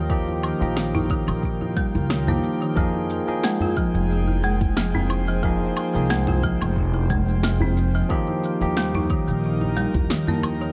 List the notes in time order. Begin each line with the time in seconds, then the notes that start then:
Already playing: D#2 D#3 D#4 F4 A#4 G5
0.09 D#3 F3 A#3 D#4 G4, kick, shaker
0.28 djembe slap, djembe tone
0.43 low woodblock, shaker
0.60 A#1 F3 A#3 D#4 G4, djembe slap, shaker
0.77 D#3, snare, shaker
0.95 D#4, djembe slap, djembe bass
1.10 D#3, kick, shaker
1.28 A#1, low woodblock, shaker
1.43 kick, shaker
1.62 djembe tone
1.77 G3, kick, shaker
1.95 C#2, djembe bass, shaker
2.10 D#3, snare, shaker
2.27 F3 A#3 D#4 G4, djembe tone, djembe bass
2.43 shaker
2.61 D#3, shaker
2.75 F2 F3 A#3 D#4 G#4, kick, shaker
2.94 djembe slap, djembe tone
3.05 G#4
3.10 shaker
3.27 F3 A#3 D#4 G#4, djembe slap, shaker
3.43 G#3, snare, shaker
3.61 F4, djembe slap, djembe bass
3.77 F3, kick, shaker
3.95 F1, shaker
4.10 shaker
4.28 djembe tone
4.43 G#3 C5, djembe slap, shaker
4.61 kick, djembe bass, shaker
4.77 F3, snare, shaker
4.95 C4, djembe bass
5.09 djembe tone, low woodblock, shaker
5.28 F3, shaker
5.43 F3 A#3 D#4 G#4, kick, shaker
5.61 djembe tone
5.77 low woodblock, shaker
5.94 C2 F3 A#3 D#4 G#4, djembe slap, shaker
6.10 G#3, snare, shaker
6.27 F4, djembe slap, djembe bass
6.43 F3, kick, djembe tone, shaker
6.61 F1, low woodblock, shaker
6.77 kick, shaker
6.94 djembe tone
7.10 G#3, kick, shaker
7.28 shaker
7.43 F3, snare, shaker
7.60 C4, djembe tone, djembe bass
7.77 shaker
7.95 F3, shaker
8.09 D#3 F3 A#3 D#4 G4, kick, shaker
8.27 djembe slap, djembe tone
8.44 shaker
8.60 D#2 F3 A#3 D#4 G4, djembe slap, shaker
8.74 G3 A#4, snare, shaker
8.94 D#4, djembe slap, djembe bass
9.10 D#3, kick, shaker
9.28 A#1, shaker
9.44 shaker
9.61 djembe tone
9.77 G3, djembe slap, shaker
9.94 D#2, kick, djembe bass, shaker
10.10 D#3, snare, shaker
10.28 A#3, djembe bass
10.43 djembe tone, low woodblock, shaker
10.61 D#3, shaker